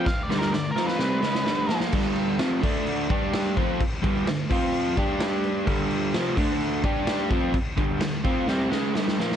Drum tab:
CC |----------------|x-x-x-x-x-x-x-x-|x-x-x-x-x-x-x-x-|x-x-x-x-x-x-x-x-|
SD |o-ooo-ooo-ooo-oo|----o-------o---|----o-------o---|----o-------o---|
BD |o---------------|o-----o---o---o-|o-o---o---o-----|o-----o---o---o-|

CC |x-x-x-x---------|
SD |----o---o-o-oooo|
BD |o-o---o---------|